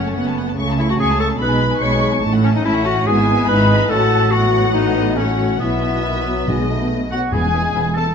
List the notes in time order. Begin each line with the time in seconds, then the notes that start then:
Already playing: F#1 F#2 A3 C#4 C#5
0.06 A5
0.15 F#1 F#2 B3 F#5
0.26 A5
0.37 F#5
0.48 A5
0.57 C#2 C#3 A3 C#4 C#6
0.69 A5
0.78 E4 E5 C#6
0.89 F#4 F#5 A5
0.98 C#2 C#3 G#4 G#5 C#6
1.10 A5
1.20 A4 A5 C#6
1.30 A5
1.39 B1 B2 G#3 D#4 B4 B5
1.50 G#5
1.59 B5
1.71 G#5
1.81 B1 B2 G#3 C#5 B5 C#6
1.91 G#5
2.01 B5
2.12 G#5
2.22 A1 A2 A3 A5
2.26 A3 C#4
2.33 F#5
2.44 C#4 C#5 A5
2.54 D#4 D#5 F#5
2.65 A1 A2 C#4 E4 E5 A5
2.73 F#5
2.84 F#4 F#5 A5
2.95 F#5
3.05 G#1 G#2 G#3 B3 E4 G#4 G#5
3.16 E5
3.25 G#5
3.37 E5
3.46 G#1 G#2 D#4 B4 G#5 B5
3.56 E5
3.66 G#5
3.76 E5
3.88 A1 A2 C#4 A4 F#5 A5
3.92 F#3 F#4
4.31 F#3 B3 F#4 F#5
4.74 D#4 D#5
5.16 F#3 A3 C#4 F#4 C#5 F#5
5.60 B1 B2 F#3 B3 E4 B4 E5
6.05 D#3
6.17 E3
6.25 F#3
6.47 B1 B2 G#3 D#5
6.70 A3
7.11 F#3 B3 F#4 F#5
7.31 E1 E2 G#3 B3 E4 G#4 G#5
7.54 B3 E4
7.75 E1 E2 B3 E4
7.95 A3 B3 E4 A4 A5